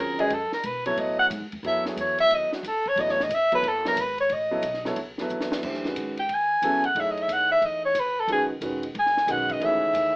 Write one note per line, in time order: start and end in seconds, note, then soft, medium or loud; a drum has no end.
0.00 0.30 D#2 medium
0.00 0.17 C#3 medium
0.00 0.17 F#3 medium
0.00 0.17 C4 medium
0.00 0.18 F4 medium
0.00 0.18 G#4 medium
0.00 0.21 A#4 medium
0.18 0.30 G#3 medium
0.18 0.30 C#4 medium
0.18 0.30 F#4 medium
0.18 0.35 G#4 medium
0.18 0.30 B4 medium
0.18 0.30 D#5 medium
0.18 ride soft
0.30 0.51 F#2 medium
0.30 0.53 A4 medium
0.30 ride medium
0.52 0.68 A#4 medium
0.52 muted upright bass stroke soft
0.52 snare soft
0.63 0.96 B2 medium
0.63 0.86 B4 medium
0.63 hi-hat pedal medium
0.63 ride medium
0.86 1.29 F#3 medium
0.86 1.29 B3 medium
0.86 1.29 E4 medium
0.86 1.29 A4 medium
0.86 1.01 C#5 medium
0.86 1.30 C#5 medium
0.86 ride medium
0.96 1.29 A2 medium
0.96 1.19 D#5 medium
0.96 ride medium
1.19 1.26 F#5 loud
1.30 1.42 G#2 medium
1.30 hi-hat pedal medium
1.30 ride medium
1.41 1.52 F#2 medium
1.52 1.62 E2 medium
1.52 ride soft
1.63 1.96 F#2 medium
1.63 2.57 F#3 medium
1.63 2.57 B3 medium
1.63 2.58 E4 medium
1.63 2.58 A4 medium
1.63 2.58 C#5 medium
1.63 ride medium
1.67 1.86 E5 medium
1.86 2.02 G#4 soft
1.86 snare medium
1.96 2.29 E2 medium
1.96 hi-hat pedal medium
1.96 ride medium
2.01 2.20 C#5 medium
2.18 2.36 E5 loud
2.18 ride medium
2.29 2.50 D#2 medium
2.29 ride medium
2.34 2.53 D#5 loud
2.51 2.69 F#4 medium
2.51 muted upright bass stroke soft
2.51 snare medium
2.63 2.95 C#2 medium
2.63 hi-hat pedal medium
2.63 ride medium
2.67 2.90 A4 medium
2.86 3.02 C#5 loud
2.86 kick medium
2.96 3.28 A1 medium
2.96 3.17 F#3 medium
2.96 3.17 B3 medium
2.96 3.17 E4 medium
2.96 3.17 A4 medium
2.96 3.18 C#5 medium
2.96 ride medium
3.00 3.13 D#5 loud
3.09 3.25 C#5 medium
3.09 snare soft
3.20 3.36 D#5 medium
3.20 snare medium
3.29 3.62 G1 medium
3.29 hi-hat pedal medium
3.29 ride medium
3.34 3.54 E5 loud
3.52 3.63 F#3 medium
3.52 3.63 B3 medium
3.52 3.63 E4 medium
3.52 3.64 A4 medium
3.52 3.70 B4 loud
3.52 3.64 C#5 medium
3.52 kick medium
3.52 ride medium
3.63 3.96 F#1 medium
3.63 ride medium
3.68 3.87 A4 medium
3.85 3.96 F#3 medium
3.85 3.96 B3 medium
3.85 3.96 E4 medium
3.85 3.96 A4 medium
3.85 4.03 A#4 loud
3.85 3.97 C#5 medium
3.85 snare medium
3.96 4.29 G#1 medium
3.96 hi-hat pedal medium
3.96 ride medium
4.01 4.20 B4 medium
4.18 4.35 C#5 loud
4.18 ride soft
4.29 4.62 A1 medium
4.29 4.86 D#5 medium
4.29 ride medium
4.51 4.62 F#3 medium
4.51 4.62 B3 medium
4.51 4.62 E4 medium
4.51 4.63 A4 medium
4.51 4.63 C#5 medium
4.63 4.96 B1 medium
4.63 hi-hat pedal medium
4.63 ride medium
4.74 snare soft
4.85 4.96 F#3 medium
4.85 4.96 B3 medium
4.85 4.96 E4 medium
4.85 4.97 A4 medium
4.85 4.97 C#5 medium
4.85 snare medium
4.96 5.29 C#2 medium
4.96 ride medium
5.18 5.62 F#3 medium
5.18 5.62 B3 medium
5.18 5.62 E4 medium
5.18 5.62 A4 medium
5.18 5.62 B4 medium
5.18 snare soft
5.29 5.62 E2 medium
5.29 hi-hat pedal medium
5.41 snare medium
5.52 snare medium
5.63 5.95 F#2 medium
5.63 5.83 E3 medium
5.63 5.83 A3 soft
5.63 5.83 D4 medium
5.63 5.83 G4 soft
5.63 5.83 C5 medium
5.63 kick medium
5.63 crash medium
5.74 snare soft
5.85 6.14 D#3 medium
5.85 6.14 G#3 medium
5.85 6.14 C#4 medium
5.85 6.15 F#4 medium
5.85 6.15 B4 medium
5.85 snare soft
5.96 6.29 G#2 medium
5.96 hi-hat pedal medium
5.96 ride medium
6.17 6.36 G5 medium
6.17 ride soft
6.29 6.61 D#2 medium
6.29 ride medium
6.34 6.87 G#5 medium
6.62 6.94 E2 medium
6.62 6.82 C#3 medium
6.62 6.83 F#3 medium
6.62 6.83 B3 medium
6.62 6.83 E4 medium
6.62 6.83 A4 medium
6.62 hi-hat pedal medium
6.62 ride medium
6.84 7.02 F#5 medium
6.84 ride soft
6.95 7.27 F#2 medium
6.95 7.89 A3 medium
6.95 7.89 D#4 soft
6.95 7.89 E4 medium
6.95 7.89 G#4 medium
6.95 7.89 C#5 medium
6.95 ride medium
7.00 7.12 E5 medium
7.11 7.24 D#5 medium
7.17 ride soft
7.22 7.34 E5 medium
7.28 7.61 D#2 medium
7.28 hi-hat pedal medium
7.28 ride medium
7.33 7.51 F#5 loud
7.52 7.67 E5 loud
7.62 7.94 E2 medium
7.62 7.84 D#5 medium
7.62 ride soft
7.85 8.01 C#5 loud
7.95 8.27 C#2 medium
7.95 hi-hat pedal medium
7.95 ride medium
8.00 8.22 B4 medium
8.20 8.31 A4 medium
8.27 8.60 F#1 medium
8.27 8.49 D#3 medium
8.27 8.49 G#3 medium
8.27 8.49 C#4 medium
8.27 8.49 F#4 medium
8.27 8.49 B4 medium
8.27 ride medium
8.32 8.44 G#4 medium
8.61 8.94 E1 medium
8.61 8.81 D#3 medium
8.61 8.82 G#3 medium
8.61 8.82 C#4 medium
8.61 8.82 F#4 medium
8.61 8.82 B4 medium
8.61 hi-hat pedal medium
8.61 ride medium
8.83 ride medium
8.95 9.27 G#1 medium
8.95 ride medium
8.99 9.33 G#5 loud
9.06 snare soft
9.17 snare soft
9.27 9.60 B1 medium
9.27 9.60 D#3 medium
9.27 9.79 G#3 medium
9.27 9.79 C#4 medium
9.27 9.80 F#4 medium
9.27 9.80 B4 medium
9.27 hi-hat pedal medium
9.27 ride medium
9.31 9.54 F#5 medium
9.49 9.67 D#5 loud
9.49 kick medium
9.49 ride medium
9.60 9.93 C#2 medium
9.60 10.12 D#3 medium
9.60 10.12 E3 medium
9.60 10.12 A3 medium
9.60 10.13 G#4 medium
9.60 10.13 C#5 medium
9.60 ride medium
9.65 10.16 E5 medium
9.93 10.16 D#2 medium
9.93 hi-hat pedal medium
9.93 ride medium